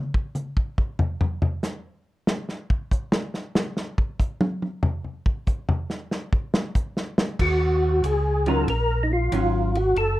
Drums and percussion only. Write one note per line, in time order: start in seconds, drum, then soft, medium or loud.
0.14 kick medium
0.35 hi-hat pedal medium
0.35 mid tom soft
0.57 kick medium
0.78 kick medium
0.99 floor tom medium
1.21 floor tom medium
1.42 floor tom medium
1.63 snare medium
1.63 hi-hat pedal medium
2.27 snare medium
2.49 snare soft
2.70 kick medium
2.91 kick medium
2.91 hi-hat pedal medium
3.12 snare medium
3.34 snare soft
3.55 snare loud
3.77 snare medium
3.98 kick medium
4.20 kick medium
4.20 hi-hat pedal medium
4.41 high tom loud
4.62 high tom medium
4.83 floor tom loud
5.04 floor tom soft
5.26 kick medium
5.47 kick medium
5.47 hi-hat pedal medium
5.69 floor tom medium
5.90 snare soft
6.11 snare soft
6.33 kick medium
6.54 snare medium
6.75 kick medium
6.75 hi-hat pedal medium
6.97 snare medium
7.18 snare loud
7.39 kick medium
7.39 crash medium
8.03 kick soft
8.03 hi-hat pedal medium
8.03 ride medium
8.46 ride soft
8.68 kick soft
8.68 ride medium
9.32 kick soft
9.32 hi-hat pedal medium
9.32 ride medium
9.75 ride soft
9.96 kick soft
9.96 ride soft